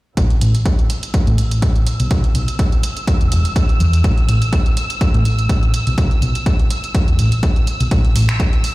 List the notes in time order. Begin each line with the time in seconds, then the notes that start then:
0.17 A1 E6, kick, closed hi-hat
0.30 closed hi-hat
0.41 A1, closed hi-hat
0.55 closed hi-hat
0.66 kick, closed hi-hat
0.79 closed hi-hat
0.90 closed hi-hat
1.03 closed hi-hat
1.14 kick, closed hi-hat
1.27 A2, closed hi-hat
1.38 A1, closed hi-hat
1.51 closed hi-hat
1.62 kick, closed hi-hat
1.76 closed hi-hat
1.87 closed hi-hat
2.00 B1, closed hi-hat
2.11 B1, kick, closed hi-hat
2.24 closed hi-hat
2.35 B1, closed hi-hat
2.48 closed hi-hat
2.59 kick, closed hi-hat
2.72 closed hi-hat
2.83 closed hi-hat
2.97 closed hi-hat
3.07 kick, closed hi-hat
3.21 E1, closed hi-hat
3.32 E1, closed hi-hat
3.45 closed hi-hat
3.56 kick, closed hi-hat
3.69 closed hi-hat
3.80 E2, closed hi-hat
3.93 closed hi-hat
4.04 A1, kick, closed hi-hat
4.18 closed hi-hat
4.29 A1, closed hi-hat
4.42 closed hi-hat
4.53 kick, closed hi-hat
4.66 closed hi-hat
4.77 closed hi-hat
4.90 closed hi-hat
5.01 kick, closed hi-hat
5.14 A2, closed hi-hat
5.25 A1, closed hi-hat
5.39 closed hi-hat
5.49 kick, closed hi-hat
5.63 closed hi-hat
5.74 closed hi-hat
5.87 B1, closed hi-hat
5.98 B1, kick, closed hi-hat
6.11 closed hi-hat
6.22 B1, closed hi-hat
6.35 closed hi-hat
6.46 kick, closed hi-hat
6.59 closed hi-hat
6.70 closed hi-hat
6.84 closed hi-hat
6.95 kick, closed hi-hat
7.08 E1, closed hi-hat
7.19 A1, closed hi-hat
7.32 closed hi-hat
7.43 kick, closed hi-hat
7.56 closed hi-hat
7.67 closed hi-hat
7.80 B1, closed hi-hat
7.91 A1 E6, kick, closed hi-hat
8.05 closed hi-hat
8.16 A1, open hi-hat
8.29 finger snap, closed hi-hat
8.40 kick, closed hi-hat
8.53 closed hi-hat
8.64 open hi-hat